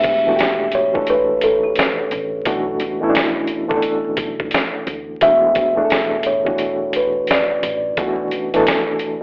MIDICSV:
0, 0, Header, 1, 6, 480
1, 0, Start_track
1, 0, Tempo, 689655
1, 1709, Time_signature, 4, 2, 24, 8
1, 6423, End_track
2, 0, Start_track
2, 0, Title_t, "Kalimba"
2, 0, Program_c, 0, 108
2, 0, Note_on_c, 0, 76, 108
2, 248, Note_off_c, 0, 76, 0
2, 521, Note_on_c, 0, 73, 104
2, 762, Note_off_c, 0, 73, 0
2, 763, Note_on_c, 0, 71, 93
2, 1001, Note_on_c, 0, 69, 81
2, 1003, Note_off_c, 0, 71, 0
2, 1137, Note_on_c, 0, 67, 69
2, 1142, Note_off_c, 0, 69, 0
2, 1448, Note_off_c, 0, 67, 0
2, 3636, Note_on_c, 0, 76, 105
2, 4361, Note_on_c, 0, 73, 85
2, 4374, Note_off_c, 0, 76, 0
2, 4846, Note_on_c, 0, 71, 74
2, 4849, Note_off_c, 0, 73, 0
2, 4950, Note_off_c, 0, 71, 0
2, 5086, Note_on_c, 0, 74, 74
2, 5434, Note_off_c, 0, 74, 0
2, 6423, End_track
3, 0, Start_track
3, 0, Title_t, "Reed electric piano"
3, 0, Program_c, 1, 4
3, 0, Control_c, 1, 64, 127
3, 0, Note_on_c, 1, 47, 68
3, 0, Note_on_c, 1, 52, 58
3, 0, Note_on_c, 1, 57, 61
3, 0, Note_on_c, 1, 62, 62
3, 0, Note_on_c, 1, 67, 75
3, 123, Note_off_c, 1, 47, 0
3, 126, Note_off_c, 1, 52, 0
3, 129, Note_off_c, 1, 57, 0
3, 132, Note_off_c, 1, 62, 0
3, 135, Note_off_c, 1, 67, 0
3, 185, Note_on_c, 1, 47, 64
3, 187, Note_on_c, 1, 52, 66
3, 196, Note_on_c, 1, 57, 67
3, 200, Note_on_c, 1, 62, 56
3, 205, Note_on_c, 1, 66, 60
3, 225, Note_off_c, 1, 66, 0
3, 251, Note_on_c, 1, 67, 85
3, 587, Note_off_c, 1, 47, 0
3, 588, Note_off_c, 1, 52, 0
3, 592, Note_off_c, 1, 57, 0
3, 594, Note_off_c, 1, 62, 0
3, 620, Note_off_c, 1, 67, 0
3, 650, Note_on_c, 1, 47, 69
3, 655, Note_on_c, 1, 52, 67
3, 661, Note_on_c, 1, 57, 69
3, 668, Note_on_c, 1, 62, 61
3, 674, Note_on_c, 1, 69, 77
3, 1468, Note_off_c, 1, 47, 0
3, 1470, Note_off_c, 1, 52, 0
3, 1473, Note_off_c, 1, 57, 0
3, 1477, Note_off_c, 1, 62, 0
3, 1480, Note_off_c, 1, 69, 0
3, 1705, Note_on_c, 1, 47, 78
3, 1710, Note_on_c, 1, 52, 76
3, 1715, Note_on_c, 1, 57, 76
3, 1717, Control_c, 1, 64, 0
3, 1721, Note_on_c, 1, 62, 76
3, 1727, Note_on_c, 1, 66, 92
3, 1832, Control_c, 1, 64, 127
3, 2036, Note_off_c, 1, 47, 0
3, 2039, Note_off_c, 1, 52, 0
3, 2041, Note_off_c, 1, 57, 0
3, 2044, Note_off_c, 1, 62, 0
3, 2047, Note_off_c, 1, 66, 0
3, 2094, Note_on_c, 1, 47, 75
3, 2099, Note_on_c, 1, 52, 70
3, 2106, Note_on_c, 1, 57, 81
3, 2109, Note_on_c, 1, 61, 59
3, 2116, Note_on_c, 1, 64, 92
3, 2137, Note_off_c, 1, 61, 0
3, 2155, Note_on_c, 1, 62, 81
3, 2501, Note_off_c, 1, 47, 0
3, 2504, Note_off_c, 1, 52, 0
3, 2507, Note_off_c, 1, 57, 0
3, 2512, Note_off_c, 1, 64, 0
3, 2532, Note_off_c, 1, 62, 0
3, 2557, Note_on_c, 1, 47, 77
3, 2565, Note_on_c, 1, 52, 66
3, 2571, Note_on_c, 1, 57, 72
3, 2575, Note_on_c, 1, 62, 81
3, 2580, Note_on_c, 1, 69, 91
3, 3381, Note_off_c, 1, 47, 0
3, 3386, Note_off_c, 1, 52, 0
3, 3388, Note_off_c, 1, 57, 0
3, 3390, Note_off_c, 1, 62, 0
3, 3393, Note_off_c, 1, 69, 0
3, 3630, Note_on_c, 1, 47, 67
3, 3637, Note_on_c, 1, 52, 69
3, 3638, Control_c, 1, 64, 0
3, 3641, Note_on_c, 1, 57, 66
3, 3644, Note_on_c, 1, 62, 62
3, 3651, Note_on_c, 1, 66, 79
3, 3780, Control_c, 1, 64, 127
3, 3959, Note_off_c, 1, 47, 0
3, 3962, Note_off_c, 1, 52, 0
3, 3964, Note_off_c, 1, 57, 0
3, 3966, Note_off_c, 1, 62, 0
3, 3969, Note_off_c, 1, 66, 0
3, 4004, Note_on_c, 1, 47, 72
3, 4010, Note_on_c, 1, 52, 71
3, 4015, Note_on_c, 1, 57, 71
3, 4021, Note_on_c, 1, 62, 72
3, 4026, Note_on_c, 1, 68, 59
3, 4055, Note_off_c, 1, 68, 0
3, 4069, Note_on_c, 1, 69, 81
3, 4416, Note_off_c, 1, 47, 0
3, 4419, Note_off_c, 1, 52, 0
3, 4422, Note_off_c, 1, 57, 0
3, 4425, Note_off_c, 1, 62, 0
3, 4449, Note_off_c, 1, 69, 0
3, 4491, Note_on_c, 1, 47, 73
3, 4496, Note_on_c, 1, 52, 69
3, 4502, Note_on_c, 1, 57, 58
3, 4504, Note_on_c, 1, 62, 62
3, 4513, Note_on_c, 1, 66, 72
3, 5308, Note_off_c, 1, 47, 0
3, 5311, Note_off_c, 1, 52, 0
3, 5314, Note_off_c, 1, 57, 0
3, 5315, Note_off_c, 1, 62, 0
3, 5319, Note_off_c, 1, 66, 0
3, 5555, Note_on_c, 1, 47, 86
3, 5557, Control_c, 1, 64, 0
3, 5559, Note_on_c, 1, 52, 77
3, 5565, Note_on_c, 1, 57, 71
3, 5570, Note_on_c, 1, 62, 69
3, 5576, Note_on_c, 1, 66, 92
3, 5699, Control_c, 1, 64, 127
3, 5881, Note_off_c, 1, 47, 0
3, 5883, Note_off_c, 1, 52, 0
3, 5886, Note_off_c, 1, 57, 0
3, 5889, Note_off_c, 1, 62, 0
3, 5892, Note_off_c, 1, 66, 0
3, 5942, Note_on_c, 1, 47, 76
3, 5944, Note_on_c, 1, 52, 83
3, 5952, Note_on_c, 1, 57, 82
3, 5955, Note_on_c, 1, 62, 82
3, 5962, Note_on_c, 1, 69, 93
3, 6345, Note_off_c, 1, 47, 0
3, 6346, Note_off_c, 1, 52, 0
3, 6350, Note_off_c, 1, 57, 0
3, 6352, Note_off_c, 1, 62, 0
3, 6355, Note_off_c, 1, 69, 0
3, 6423, End_track
4, 0, Start_track
4, 0, Title_t, "Upright bass"
4, 0, Program_c, 2, 32
4, 0, Note_on_c, 2, 28, 100
4, 1202, Note_off_c, 2, 28, 0
4, 1472, Note_on_c, 2, 33, 84
4, 1670, Note_off_c, 2, 33, 0
4, 1713, Note_on_c, 2, 35, 100
4, 1911, Note_off_c, 2, 35, 0
4, 1951, Note_on_c, 2, 37, 87
4, 2069, Note_off_c, 2, 37, 0
4, 2581, Note_on_c, 2, 37, 84
4, 2658, Note_off_c, 2, 37, 0
4, 2907, Note_on_c, 2, 35, 83
4, 3107, Note_off_c, 2, 35, 0
4, 3387, Note_on_c, 2, 38, 89
4, 3587, Note_off_c, 2, 38, 0
4, 3630, Note_on_c, 2, 28, 104
4, 5042, Note_off_c, 2, 28, 0
4, 5311, Note_on_c, 2, 33, 84
4, 5510, Note_off_c, 2, 33, 0
4, 5551, Note_on_c, 2, 35, 98
4, 5749, Note_off_c, 2, 35, 0
4, 5795, Note_on_c, 2, 37, 79
4, 5911, Note_off_c, 2, 37, 0
4, 6423, End_track
5, 0, Start_track
5, 0, Title_t, "Muted upright bass strokes"
5, 2814, Note_on_c, 9, 29, 45
5, 2884, Note_off_c, 9, 29, 0
5, 6423, End_track
6, 0, Start_track
6, 0, Title_t, "Drums"
6, 24, Note_on_c, 9, 42, 67
6, 30, Note_on_c, 9, 36, 93
6, 94, Note_off_c, 9, 42, 0
6, 100, Note_off_c, 9, 36, 0
6, 271, Note_on_c, 9, 42, 68
6, 283, Note_on_c, 9, 38, 107
6, 340, Note_off_c, 9, 42, 0
6, 352, Note_off_c, 9, 38, 0
6, 499, Note_on_c, 9, 42, 62
6, 568, Note_off_c, 9, 42, 0
6, 662, Note_on_c, 9, 36, 77
6, 731, Note_off_c, 9, 36, 0
6, 742, Note_on_c, 9, 42, 71
6, 812, Note_off_c, 9, 42, 0
6, 984, Note_on_c, 9, 42, 62
6, 1053, Note_off_c, 9, 42, 0
6, 1221, Note_on_c, 9, 42, 62
6, 1246, Note_on_c, 9, 38, 99
6, 1291, Note_off_c, 9, 42, 0
6, 1315, Note_off_c, 9, 38, 0
6, 1470, Note_on_c, 9, 42, 59
6, 1539, Note_off_c, 9, 42, 0
6, 1708, Note_on_c, 9, 42, 74
6, 1712, Note_on_c, 9, 36, 97
6, 1778, Note_off_c, 9, 42, 0
6, 1781, Note_off_c, 9, 36, 0
6, 1947, Note_on_c, 9, 42, 61
6, 2016, Note_off_c, 9, 42, 0
6, 2191, Note_on_c, 9, 42, 64
6, 2203, Note_on_c, 9, 38, 104
6, 2261, Note_off_c, 9, 42, 0
6, 2273, Note_off_c, 9, 38, 0
6, 2418, Note_on_c, 9, 42, 60
6, 2488, Note_off_c, 9, 42, 0
6, 2581, Note_on_c, 9, 36, 87
6, 2651, Note_off_c, 9, 36, 0
6, 2661, Note_on_c, 9, 42, 67
6, 2731, Note_off_c, 9, 42, 0
6, 2901, Note_on_c, 9, 42, 68
6, 2905, Note_on_c, 9, 36, 89
6, 2971, Note_off_c, 9, 42, 0
6, 2975, Note_off_c, 9, 36, 0
6, 3061, Note_on_c, 9, 36, 89
6, 3130, Note_off_c, 9, 36, 0
6, 3138, Note_on_c, 9, 42, 67
6, 3163, Note_on_c, 9, 38, 99
6, 3208, Note_off_c, 9, 42, 0
6, 3232, Note_off_c, 9, 38, 0
6, 3389, Note_on_c, 9, 42, 61
6, 3458, Note_off_c, 9, 42, 0
6, 3627, Note_on_c, 9, 42, 73
6, 3629, Note_on_c, 9, 36, 94
6, 3696, Note_off_c, 9, 42, 0
6, 3699, Note_off_c, 9, 36, 0
6, 3864, Note_on_c, 9, 42, 66
6, 3869, Note_on_c, 9, 36, 96
6, 3934, Note_off_c, 9, 42, 0
6, 3938, Note_off_c, 9, 36, 0
6, 4109, Note_on_c, 9, 42, 62
6, 4120, Note_on_c, 9, 38, 109
6, 4178, Note_off_c, 9, 42, 0
6, 4190, Note_off_c, 9, 38, 0
6, 4337, Note_on_c, 9, 42, 63
6, 4407, Note_off_c, 9, 42, 0
6, 4499, Note_on_c, 9, 36, 86
6, 4569, Note_off_c, 9, 36, 0
6, 4582, Note_on_c, 9, 42, 74
6, 4651, Note_off_c, 9, 42, 0
6, 4824, Note_on_c, 9, 42, 66
6, 4893, Note_off_c, 9, 42, 0
6, 5062, Note_on_c, 9, 42, 64
6, 5086, Note_on_c, 9, 38, 99
6, 5131, Note_off_c, 9, 42, 0
6, 5155, Note_off_c, 9, 38, 0
6, 5311, Note_on_c, 9, 42, 64
6, 5380, Note_off_c, 9, 42, 0
6, 5548, Note_on_c, 9, 42, 77
6, 5550, Note_on_c, 9, 36, 101
6, 5617, Note_off_c, 9, 42, 0
6, 5620, Note_off_c, 9, 36, 0
6, 5786, Note_on_c, 9, 42, 62
6, 5855, Note_off_c, 9, 42, 0
6, 5942, Note_on_c, 9, 42, 51
6, 6012, Note_off_c, 9, 42, 0
6, 6032, Note_on_c, 9, 42, 66
6, 6044, Note_on_c, 9, 38, 110
6, 6102, Note_off_c, 9, 42, 0
6, 6113, Note_off_c, 9, 38, 0
6, 6260, Note_on_c, 9, 42, 61
6, 6329, Note_off_c, 9, 42, 0
6, 6423, End_track
0, 0, End_of_file